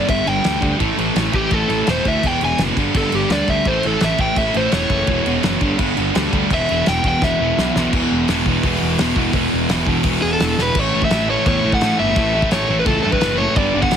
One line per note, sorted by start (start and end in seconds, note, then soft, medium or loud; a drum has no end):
0.08 0.20 G1 medium
0.08 0.24 G2 medium
0.08 0.26 D3 loud
0.08 0.26 G3 loud
0.08 0.27 E5 loud
0.08 kick loud
0.08 crash medium
0.26 0.38 G1 medium
0.26 0.42 G2 medium
0.26 0.43 D3 medium
0.26 0.44 G3 medium
0.26 0.79 G5 medium
0.26 crash medium
0.43 0.56 D2 medium
0.43 0.60 G2 medium
0.43 0.60 D3 loud
0.43 0.61 G3 loud
0.43 snare loud
0.43 crash medium
0.61 0.73 D2 medium
0.61 0.78 G2 medium
0.61 0.78 D3 medium
0.61 0.79 G3 medium
0.61 kick medium
0.61 crash medium
0.79 0.91 A1 medium
0.79 0.96 A2 medium
0.79 0.97 E3 medium
0.79 0.97 A3 loud
0.79 kick loud
0.79 crash medium
0.97 1.09 A1 medium
0.97 1.14 A2 medium
0.97 1.15 E3 medium
0.97 1.15 A3 loud
0.97 crash medium
1.15 1.27 A1 loud
1.15 1.32 A2 medium
1.15 1.33 E3 medium
1.15 1.33 A3 medium
1.15 snare loud
1.15 crash medium
1.33 1.45 A1 medium
1.33 1.50 A2 medium
1.33 1.51 E3 medium
1.33 1.51 A3 medium
1.33 1.54 G4 medium
1.33 kick medium
1.33 crash medium
1.51 1.63 A1 medium
1.51 1.69 A2 loud
1.51 1.69 E3 loud
1.51 1.70 A3 loud
1.51 1.87 A4 medium
1.51 kick loud
1.51 crash medium
1.69 1.81 A1 medium
1.69 1.86 A2 medium
1.69 1.87 E3 medium
1.69 1.87 A3 medium
1.69 crash medium
1.87 1.99 E1 medium
1.87 2.04 A2 medium
1.87 2.04 E3 medium
1.87 2.05 A3 medium
1.87 2.06 C5 medium
1.87 snare loud
1.87 crash medium
2.05 2.17 D2 medium
2.05 2.22 A2 medium
2.05 2.22 E3 medium
2.05 2.23 A3 medium
2.05 2.27 E5 medium
2.05 kick medium
2.05 crash medium
2.23 2.35 E1 medium
2.23 2.42 E2 loud
2.23 2.42 B2 medium
2.23 2.43 E3 loud
2.23 2.42 G5 medium
2.23 kick loud
2.23 crash medium
2.41 2.52 E1 medium
2.41 2.59 E2 medium
2.41 2.60 B2 medium
2.41 2.61 E3 medium
2.41 2.60 G#5 loud
2.41 crash medium
2.58 2.70 F#1 medium
2.58 2.77 E2 medium
2.58 2.77 B2 medium
2.58 2.77 E3 loud
2.58 snare loud
2.58 crash medium
2.77 2.88 G1 medium
2.77 2.94 G2 medium
2.77 2.95 D3 loud
2.77 2.96 G3 loud
2.77 kick medium
2.77 crash medium
2.94 3.06 G1 medium
2.94 3.11 G2 loud
2.94 3.12 D3 loud
2.94 3.12 G3 medium
2.94 3.15 A4 loud
2.94 kick loud
2.94 crash medium
3.12 3.24 G1 medium
3.12 3.29 G2 medium
3.12 3.30 D3 medium
3.12 3.31 G3 loud
3.12 3.31 G4 medium
3.12 crash medium
3.29 3.41 D2 medium
3.29 3.48 G2 medium
3.29 3.49 D3 medium
3.29 3.49 G3 loud
3.29 3.49 D5 loud
3.29 snare loud
3.29 crash medium
3.48 3.59 D2 medium
3.48 3.66 G2 medium
3.48 3.66 D3 medium
3.48 3.66 G3 loud
3.48 3.67 E5 loud
3.48 kick medium
3.48 crash medium
3.65 3.77 A1 medium
3.65 3.84 A2 medium
3.65 3.85 E3 loud
3.65 3.85 A3 loud
3.65 3.84 C5 medium
3.65 kick loud
3.65 crash medium
3.83 3.95 A1 medium
3.83 4.01 A2 medium
3.83 4.02 E3 medium
3.83 4.03 A3 loud
3.83 4.03 A4 loud
3.83 crash medium
4.00 4.13 A1 loud
4.00 4.18 A2 medium
4.00 4.19 E3 medium
4.00 4.20 A3 medium
4.00 4.21 E5 medium
4.00 snare loud
4.00 crash medium
4.18 4.30 A1 medium
4.18 4.36 A2 medium
4.18 4.37 E3 loud
4.18 4.37 A3 medium
4.18 4.38 G5 medium
4.18 kick medium
4.18 crash medium
4.36 4.48 A1 medium
4.36 4.54 A2 loud
4.36 4.54 E3 loud
4.36 4.55 A3 loud
4.36 4.55 E5 medium
4.36 kick loud
4.36 crash medium
4.54 4.66 A1 medium
4.54 4.72 A2 medium
4.54 4.72 E3 medium
4.54 4.73 A3 medium
4.54 4.73 C5 medium
4.54 crash medium
4.72 4.84 E1 loud
4.72 4.90 A2 medium
4.72 4.90 E3 loud
4.72 4.91 A3 loud
4.72 5.77 C#5 loud
4.72 snare loud
4.72 crash medium
4.90 5.02 F#1 medium
4.90 5.08 A2 medium
4.90 5.08 E3 loud
4.90 5.08 A3 medium
4.90 kick medium
4.90 crash medium
5.07 5.20 E1 medium
5.07 5.25 E2 loud
5.07 5.25 B2 loud
5.07 5.26 E3 loud
5.07 kick loud
5.07 crash medium
5.26 5.37 E1 medium
5.26 5.42 E2 medium
5.26 5.44 B2 loud
5.26 5.44 E3 loud
5.26 crash medium
5.43 5.55 F#1 medium
5.43 5.61 E2 medium
5.43 5.62 B2 medium
5.43 5.62 E3 medium
5.43 snare loud
5.43 crash medium
5.61 5.73 G1 medium
5.61 5.77 G2 medium
5.61 5.78 D3 loud
5.61 5.78 G3 loud
5.61 kick medium
5.61 crash medium
5.78 5.91 G1 medium
5.78 5.95 G2 loud
5.78 5.96 D3 loud
5.78 5.97 G3 loud
5.78 kick loud
5.78 crash medium
5.97 6.09 G1 medium
5.97 6.13 G2 medium
5.97 6.14 D3 medium
5.97 6.15 G3 loud
5.97 crash medium
6.14 6.27 D2 medium
6.14 6.32 G2 medium
6.14 6.33 D3 medium
6.14 6.33 G3 medium
6.14 snare loud
6.14 crash medium
6.33 6.44 D2 medium
6.33 6.50 G2 medium
6.33 6.50 D3 medium
6.33 6.51 G3 loud
6.33 kick medium
6.33 crash medium
6.50 6.62 E1 loud
6.50 6.68 E2 loud
6.50 6.69 B2 loud
6.50 6.70 E3 loud
6.50 6.87 E5 loud
6.50 kick loud
6.50 crash medium
6.69 6.81 E1 medium
6.69 6.85 E2 medium
6.69 6.86 B2 medium
6.69 6.87 E3 loud
6.69 crash medium
6.86 6.99 E1 medium
6.86 7.03 E2 medium
6.86 7.04 B2 medium
6.86 7.04 E3 medium
6.86 7.05 G5 loud
6.86 snare loud
6.86 crash medium
7.04 7.15 E1 medium
7.04 7.21 E2 medium
7.04 7.22 B2 medium
7.04 7.22 E3 medium
7.04 kick medium
7.04 crash medium
7.08 7.24 G5 medium
7.22 7.33 E1 medium
7.22 7.40 E2 loud
7.22 7.40 B2 loud
7.22 7.41 E3 medium
7.22 7.92 E5 loud
7.22 kick loud
7.22 snare medium
7.40 7.51 E1 medium
7.40 7.58 E2 loud
7.40 7.58 B2 medium
7.40 7.59 E3 loud
7.58 7.69 B1 medium
7.58 7.76 E2 medium
7.58 7.77 B2 loud
7.58 7.77 E3 loud
7.58 snare medium
7.75 7.86 B1 medium
7.75 7.93 E2 medium
7.75 7.94 B2 medium
7.75 7.94 E3 medium
7.75 snare medium
7.93 8.05 E1 medium
7.93 8.29 E2 loud
7.93 8.29 B2 loud
7.93 8.31 E3 loud
7.93 kick loud
7.93 crash loud
8.12 8.24 E1 medium
8.28 8.41 E1 loud
8.28 8.47 E2 medium
8.28 8.47 B2 medium
8.28 8.48 E3 medium
8.28 snare loud
8.28 open hi-hat medium
8.46 8.58 E1 medium
8.46 8.63 E2 medium
8.46 8.64 B2 loud
8.46 8.66 E3 loud
8.46 kick medium
8.63 8.76 E1 medium
8.63 8.99 E2 loud
8.63 8.99 B2 loud
8.63 9.01 E3 loud
8.63 kick loud
8.63 open hi-hat medium
8.82 8.94 E1 medium
8.98 9.12 E1 medium
8.98 9.15 E2 loud
8.98 9.17 B2 loud
8.98 9.18 E3 medium
8.98 snare loud
8.98 open hi-hat medium
9.16 9.29 E1 medium
9.16 9.33 E2 medium
9.16 9.33 B2 medium
9.16 9.34 E3 medium
9.16 kick medium
9.33 9.46 E1 medium
9.33 9.68 E2 loud
9.33 9.69 B2 loud
9.33 9.70 E3 loud
9.33 kick loud
9.33 open hi-hat medium
9.53 9.65 E1 medium
9.69 9.82 E1 loud
9.69 9.86 E2 medium
9.69 9.87 B2 medium
9.69 9.87 E3 loud
9.69 snare loud
9.69 open hi-hat medium
9.87 9.99 E1 medium
9.87 10.03 E2 medium
9.87 10.04 B2 loud
9.87 10.04 E3 loud
9.87 kick medium
10.03 10.16 E1 medium
10.03 10.39 E2 medium
10.03 10.40 B2 loud
10.03 10.40 E3 loud
10.03 kick loud
10.03 open hi-hat medium
10.22 10.35 E1 medium
10.22 10.31 G#4 medium
10.33 10.59 A4 medium
10.40 10.53 E1 medium
10.40 10.57 E2 medium
10.40 10.57 B2 medium
10.40 10.58 E3 loud
10.40 snare loud
10.40 open hi-hat medium
10.58 10.70 E1 medium
10.58 10.74 E2 medium
10.58 10.75 B2 medium
10.58 10.75 E3 medium
10.58 10.79 B4 medium
10.58 snare medium
10.75 10.87 A1 loud
10.75 10.92 A2 loud
10.75 10.93 E3 loud
10.75 10.94 A3 loud
10.75 kick loud
10.75 crash loud
10.75 crash medium
10.79 11.04 C#5 loud
10.93 11.06 A1 medium
10.93 11.11 A2 medium
10.93 11.12 E3 loud
10.93 11.12 A3 loud
11.02 11.30 E5 medium
11.02 kick medium
11.10 11.35 A1 loud
11.10 11.28 A2 loud
11.10 11.29 E3 loud
11.10 11.29 A3 loud
11.10 snare loud
11.10 crash medium
11.29 11.45 A2 medium
11.29 11.46 E3 loud
11.29 11.47 A3 loud
11.29 11.46 C#5 medium
11.46 11.58 E2 loud
11.46 11.63 A2 loud
11.46 11.63 E3 loud
11.46 11.64 A3 loud
11.46 11.71 C#5 loud
11.46 kick loud
11.46 crash medium
11.64 11.76 A1 medium
11.64 11.81 A2 loud
11.64 11.81 E3 loud
11.64 11.82 A3 loud
11.72 11.99 F#5 loud
11.72 kick medium
11.81 11.94 A2 medium
11.81 11.98 A2 loud
11.81 11.99 E3 loud
11.81 11.99 A3 loud
11.81 snare loud
11.81 crash medium
11.99 12.11 G1 medium
11.99 12.16 A2 medium
11.99 12.17 E3 medium
11.99 12.17 A3 medium
11.99 12.48 E5 loud
12.16 12.40 A1 medium
12.16 12.32 A2 loud
12.16 12.33 E3 loud
12.16 12.34 A3 loud
12.16 kick loud
12.16 crash medium
12.33 12.51 A2 medium
12.33 12.51 E3 loud
12.33 12.52 A3 loud
12.42 kick medium
12.51 12.63 A1 loud
12.51 12.69 A2 medium
12.51 12.69 E3 loud
12.51 12.69 A3 loud
12.51 12.77 C#5 medium
12.51 snare loud
12.51 crash medium
12.69 12.81 A1 loud
12.69 12.85 A2 medium
12.69 12.86 E3 medium
12.69 12.86 A3 medium
12.79 12.86 B4 medium
12.86 12.98 C#2 medium
12.86 13.02 A2 loud
12.86 13.03 E3 medium
12.86 13.04 A3 loud
12.86 13.01 A4 medium
12.86 kick loud
12.86 crash medium
13.03 13.17 G2 medium
13.03 13.19 A2 medium
13.03 13.20 E3 medium
13.03 13.21 A3 loud
13.03 13.12 A4 medium
13.12 13.40 B4 medium
13.12 kick medium
13.21 13.45 F#1 medium
13.21 13.37 A2 loud
13.21 13.38 E3 loud
13.21 13.39 A3 loud
13.21 snare loud
13.21 crash medium
13.38 13.55 A2 medium
13.38 13.56 E3 medium
13.38 13.56 A3 loud
13.38 13.56 C#5 loud
13.56 13.69 G1 loud
13.56 13.74 G2 loud
13.56 13.73 D3 loud
13.56 13.75 G3 loud
13.56 13.82 D5 loud
13.56 kick loud
13.56 crash medium
13.74 13.86 G1 medium
13.74 13.90 G2 loud
13.74 13.90 D3 medium
13.74 13.92 G3 loud
13.82 13.97 F#5 loud
13.82 kick loud
13.91 13.97 G1 loud
13.91 13.97 G2 loud
13.91 13.97 D3 medium
13.91 13.97 G3 loud
13.91 snare loud
13.91 crash medium